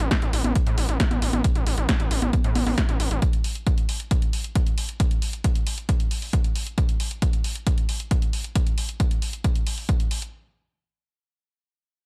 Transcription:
0.11 kick, snare, closed hi-hat
0.22 A1, closed hi-hat
0.33 A1, open hi-hat
0.44 A1, closed hi-hat, high conga
0.55 kick, closed hi-hat
0.67 A2, closed hi-hat
0.78 A1, open hi-hat
0.89 A1, closed hi-hat
1.00 kick, snare, closed hi-hat
1.11 A1, closed hi-hat, high conga
1.22 A1, open hi-hat
1.33 A1, closed hi-hat, high conga
1.44 kick, closed hi-hat
1.55 A1, closed hi-hat
1.67 A1, open hi-hat
1.78 A1, closed hi-hat
1.89 kick, snare, closed hi-hat
2.00 A1, closed hi-hat
2.11 A1, open hi-hat
2.22 A1, closed hi-hat, high conga
2.33 kick, closed hi-hat, high conga
2.44 A2, closed hi-hat
2.55 A1, open hi-hat, high conga
2.67 A1, snare, open hi-hat, high conga
2.78 kick, snare, closed hi-hat
2.89 A1, closed hi-hat
3.00 A1, open hi-hat
3.11 A1, closed hi-hat
3.22 kick, closed hi-hat
3.33 closed hi-hat
3.44 open hi-hat
3.55 closed hi-hat
3.67 kick, closed hi-hat
3.78 closed hi-hat
3.89 open hi-hat
4.00 closed hi-hat
4.11 kick, closed hi-hat
4.22 closed hi-hat
4.33 open hi-hat
4.44 closed hi-hat
4.55 kick, closed hi-hat
4.67 closed hi-hat
4.78 open hi-hat
4.89 closed hi-hat
5.00 kick, closed hi-hat
5.11 closed hi-hat
5.22 open hi-hat
5.33 closed hi-hat
5.44 kick, closed hi-hat
5.55 closed hi-hat
5.67 open hi-hat
5.78 closed hi-hat
5.89 kick, closed hi-hat
6.00 closed hi-hat
6.11 open hi-hat
6.22 open hi-hat
6.33 kick, closed hi-hat
6.44 closed hi-hat
6.55 open hi-hat
6.67 closed hi-hat
6.78 kick, closed hi-hat
6.89 closed hi-hat
7.00 open hi-hat
7.11 closed hi-hat
7.22 kick, closed hi-hat
7.33 closed hi-hat
7.44 open hi-hat
7.56 closed hi-hat
7.67 kick, closed hi-hat
7.78 closed hi-hat
7.89 open hi-hat
8.00 closed hi-hat
8.11 kick, closed hi-hat
8.22 closed hi-hat
8.33 open hi-hat
8.44 closed hi-hat
8.55 kick, closed hi-hat
8.67 closed hi-hat
8.78 open hi-hat
8.89 closed hi-hat
9.00 kick, closed hi-hat
9.11 closed hi-hat
9.22 open hi-hat
9.33 closed hi-hat
9.44 kick, closed hi-hat
9.55 closed hi-hat
9.67 open hi-hat
9.78 open hi-hat
9.89 kick, closed hi-hat
10.00 closed hi-hat
10.11 open hi-hat
10.22 closed hi-hat

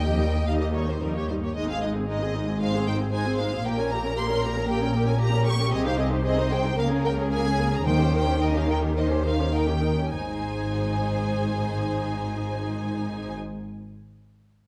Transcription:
Already playing: D#2 D#5 G5
0.07 F2 A#3 G4
0.21 D#2 G3 D#4
0.34 A#3 G4
0.46 D#2 G3 D#4 F5
0.61 A#3 G4 D#5
0.74 G3 D#4 C#5
0.88 A#3 G4 C5
1.01 F2 G3 D#4 A#4
1.15 A#3 G4 C#5
1.28 G2 G3 D#4 C5
1.42 A#3 G4 C#5
1.54 G#1 G#2 G#3 D#4 D#5
1.68 C4 G#4 F5
1.81 G#3 D#4 D#5
1.95 C4 G#4
2.08 G#3 D#4 D#5
2.21 C4 G#4
2.34 G#3 D#4
2.48 C4 G#4
2.61 G#3 D#4 C5 F5
2.74 C4 G#4
2.86 G#3 D#4 G5
3.00 C4 G#4
3.12 G#3 D#4 C5 G#5
3.27 C4 G#4
3.38 G#3 D#4 F5
3.53 C4 G#4
3.65 A#1 A#2 A#3 G4 A#4 G5
3.78 C#4 A#4 G#5
3.91 A#3 G4 A#5
4.04 C#4 A#4
4.17 A#3 G4 C6
4.30 C#4 A#4
4.42 A#3 G4 A#5
4.56 C#4 A#4
4.69 A#3 G4 G5
4.82 C#4 A#4
4.94 A#3 G4
5.07 C#4 A#4 G#5
5.20 A#3 G4 A#5
5.34 C#4 A#4
5.46 A#3 G4 C#6
5.60 C#4 A#4
5.72 C2 C3 C4 G#4 D#5
5.86 D#4 C5 F5
5.98 C4 G#4 D#5
6.11 D#4 C5
6.24 C4 G#4 C5 D#5
6.38 D#4 C5
6.51 C4 G#4 G5
6.65 D#4 C5
6.77 C#2 C#3 A#3 A#4 F5
6.91 C#4 G#4
7.05 A#3 A#4 G5
7.18 C#4 G#4
7.31 A#3 G#4 A#4 G#5
7.45 C#4 G#4
7.58 A#3 A#4
7.73 C#4 G#4 A#5
7.85 D#2 D#3 D#4 A#4 C5 G5
8.00 C#4 G4
8.13 D#4 A#4 G5
8.28 C#4 G4
8.41 D#4 A#4 D#5
8.55 C#4 G4 F5
8.68 D#4 A#4 G5
8.82 C#4 G4
8.96 D#4 A#4 C5 D#5
9.11 C#4 G4
9.25 D#4 A#4 F5
9.40 C#4 G4
9.54 D#4 A#4 G5
9.68 C#4 G4
9.83 D#4 A#4
9.99 C#4 G4
10.12 G#1 G#2 D#4 G#4 C5 G#5

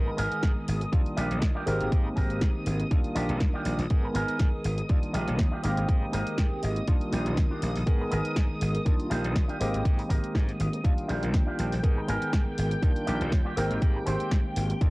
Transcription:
Already playing: D#3 G#3 B3 G#4 A#4 D#6
0.06 muted clean electric guitar stroke
0.17 G#1 B3 G#4 A#4, open hi-hat
0.32 closed hi-hat
0.43 G#2, kick, snare, closed hi-hat
0.68 G#1, open hi-hat
0.80 muted clean electric guitar stroke, closed hi-hat
0.92 D#2 D#3 G3 A#3 D4 F4, kick, closed hi-hat
1.06 closed hi-hat
1.17 A#1 D4 F4 G4, open hi-hat
1.31 A#1, closed hi-hat
1.42 D#2, kick, snare, closed hi-hat
1.55 D4 F4 G4
1.66 G#1 D#3 G#3 A#3 C4 G4 A#4, open hi-hat
1.80 G#1, closed hi-hat
1.92 kick, closed hi-hat
2.05 muted clean electric guitar stroke
2.16 G#1 C4 G4 A#4, kick, snare, open hi-hat
2.30 closed hi-hat
2.41 G#2, kick, snare, closed hi-hat
2.66 G#1, open hi-hat
2.79 muted clean electric guitar stroke, closed hi-hat
2.91 D#2 D#3 G3 A#3 D4 F4 D#6, kick, closed hi-hat
3.04 closed hi-hat
3.15 A#1 D4 F4 G4, open hi-hat
3.29 A#1, closed hi-hat
3.40 D#2, kick, snare, closed hi-hat
3.54 D4 F4 G4
3.65 A#1, open hi-hat
3.79 A#1, open hi-hat
3.90 G#2 D#3 G#3 B3 G#4 A#4, kick, closed hi-hat
4.03 muted clean electric guitar stroke
4.14 G#1 B3 G#4 A#4, open hi-hat
4.28 closed hi-hat
4.39 G#2, kick, snare, closed hi-hat
4.64 G#1, open hi-hat
4.77 muted clean electric guitar stroke, closed hi-hat
4.89 D#2 D#3 G3 A#3 D4 F4, kick, closed hi-hat
5.03 closed hi-hat
5.13 A#1 D4 F4 G4, open hi-hat
5.28 A#1, closed hi-hat
5.39 D#2, kick, snare, closed hi-hat
5.51 D4 F4 G4
5.63 G#1 D#3 G#3 A#3 C4 G4 A#4, open hi-hat
5.77 G#1, closed hi-hat
5.89 G#2, kick, closed hi-hat
6.01 muted clean electric guitar stroke
6.12 G#1 C4 G4 A#4 A#5, open hi-hat
6.27 closed hi-hat
6.38 G#2 G5, kick, snare, closed hi-hat
6.63 G#1 D#5, open hi-hat
6.76 muted clean electric guitar stroke, closed hi-hat
6.87 D#2 D#3 G3 A#3 D4 F4, kick, closed hi-hat
7.01 closed hi-hat
7.12 A#1 D4 F4 G4, open hi-hat
7.26 A#1, closed hi-hat
7.37 D#2, kick, snare, closed hi-hat
7.50 D4 F4 G4
7.62 A#1, open hi-hat
7.75 A#1, open hi-hat
7.86 D#3 G#3 B3 G#4 A#4, kick, closed hi-hat
8.00 muted clean electric guitar stroke
8.11 G#1 B3 G#4 A#4, open hi-hat
8.25 closed hi-hat
8.36 G#2, kick, snare, closed hi-hat
8.61 G#1, open hi-hat
8.74 muted clean electric guitar stroke, closed hi-hat
8.85 D#2 D#3 G3 A#3 D4 F4, kick, closed hi-hat
9.00 closed hi-hat
9.10 A#1 D4 F4 G4, open hi-hat
9.24 A#1, closed hi-hat
9.36 D#2, kick, snare, closed hi-hat
9.48 D4 F4 G4, closed hi-hat
9.60 G#1 D#3 G#3 A#3 C4 G4 A#4, open hi-hat
9.74 G#1, closed hi-hat
9.85 G#2, kick, closed hi-hat
9.98 muted clean electric guitar stroke, open hi-hat
10.09 G#1 C4 G4 A#4, kick, snare, open hi-hat
10.24 muted slap bass stroke, closed hi-hat
10.35 G#2, kick, snare, closed hi-hat
10.49 closed hi-hat
10.60 G#1, open hi-hat
10.72 muted clean electric guitar stroke, closed hi-hat
10.84 D#2 D#3 G3 A#3 D4 F4 G5, kick, closed hi-hat
10.98 closed hi-hat
11.08 A#1 D4 F4 G4, open hi-hat
11.23 A#1, closed hi-hat
11.34 D#2, kick, snare, closed hi-hat
11.47 D4 F4 G4
11.59 A#1, open hi-hat
11.72 A#1, open hi-hat
11.83 D#3 G#3 B3 G#4 A#4, kick, closed hi-hat
11.96 muted clean electric guitar stroke
12.08 G#1 B3 G#4 A#4, open hi-hat
12.22 closed hi-hat
12.33 G#2, kick, snare, closed hi-hat
12.58 G#1, open hi-hat
12.71 muted clean electric guitar stroke, closed hi-hat
12.82 D#2 D#3 G3 A#3 D4 F4, kick, closed hi-hat
12.96 closed hi-hat
13.07 A#1 D4 F4 G4, open hi-hat
13.21 A#1, closed hi-hat
13.32 D#2, kick, snare, closed hi-hat
13.45 D4 F4 G4
13.56 G#1 D#3 G#3 A#3 C4 G4 A#4, open hi-hat
13.71 G#1, closed hi-hat
13.82 G#2, kick, closed hi-hat
13.95 muted clean electric guitar stroke
14.06 G#1 C4 G4 C5, open hi-hat
14.20 closed hi-hat
14.31 G#2, kick, snare, closed hi-hat
14.56 G#1, open hi-hat
14.69 muted clean electric guitar stroke, closed hi-hat
14.80 D#2 D#3 G3 A#3 D4 F4, kick, closed hi-hat

